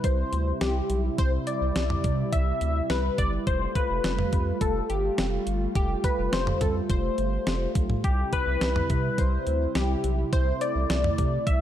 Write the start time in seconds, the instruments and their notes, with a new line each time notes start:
Already playing: analog synth pad C3 G3 E4
0.04 analog synth bass C2, analog polysynth C5, kick, closed hi-hat
0.33 analog synth bass D2, closed hi-hat
0.61 analog synth bass C2, analog polysynth G4, snare, closed hi-hat
0.90 analog synth bass B1, closed hi-hat
1.18 analog synth bass C2, analog polysynth C5, kick, closed hi-hat
1.47 analog polysynth D5, closed hi-hat
1.61 analog synth bass C2
1.76 analog synth bass C2, snare, closed hi-hat
1.90 mid tom
2.04 analog synth bass C3, kick, closed hi-hat
2.33 analog synth bass C2, analog polysynth E5, kick, closed hi-hat
2.61 analog synth bass D2, closed hi-hat
2.90 analog synth bass C2, analog polysynth B4, snare, closed hi-hat
3.18 analog synth bass G1, analog polysynth D5, kick, closed hi-hat
3.47 analog synth bass F1, analog synth pad A3 F4, analog polysynth C5, kick, closed hi-hat
3.75 analog polysynth B4, kick, closed hi-hat
3.90 analog synth bass F1
4.04 analog synth bass F1, snare, closed hi-hat
4.19 mid tom
4.33 analog synth bass F2, kick, closed hi-hat
4.61 analog synth bass F1, analog polysynth A4, kick, closed hi-hat
4.90 analog synth bass G1, analog polysynth G4, closed hi-hat
5.18 analog synth bass F1, snare, closed hi-hat
5.47 analog synth bass G1, closed hi-hat
5.75 analog synth bass F1, analog polysynth G4, kick, closed hi-hat
6.04 analog polysynth B4, kick, closed hi-hat
6.18 analog synth bass F1
6.33 analog synth bass F1, analog polysynth C5, snare, closed hi-hat
6.47 mid tom
6.61 analog synth bass F2, analog polysynth A4, kick, closed hi-hat, mid tom
6.90 analog synth bass F1, analog polysynth C5, kick, closed hi-hat
7.18 analog synth bass G1, closed hi-hat
7.47 analog synth bass F1, snare, closed hi-hat
7.75 analog synth bass B1, kick, closed hi-hat
7.90 mid tom
8.04 analog synth bass C2, analog synth pad C3 E4, analog polysynth G4, kick, closed hi-hat
8.33 analog polysynth B4, kick, closed hi-hat
8.47 analog synth bass C2
8.61 analog synth bass C2, snare, closed hi-hat
8.76 mid tom
8.90 analog synth bass C3, kick, closed hi-hat
9.18 analog synth bass C2, analog polysynth C5, kick, closed hi-hat
9.47 analog synth bass D2, closed hi-hat
9.75 analog synth bass C2, analog polysynth G4, snare, closed hi-hat
10.04 analog synth bass B1, closed hi-hat
10.33 analog synth bass C2, analog synth pad A3, analog polysynth C5, kick, closed hi-hat
10.61 analog polysynth D5, closed hi-hat
10.75 analog synth bass C2
10.90 analog synth bass C2, snare, closed hi-hat
11.04 mid tom
11.18 analog synth bass C3, kick, closed hi-hat
11.47 analog synth bass C2, analog polysynth E5, kick, closed hi-hat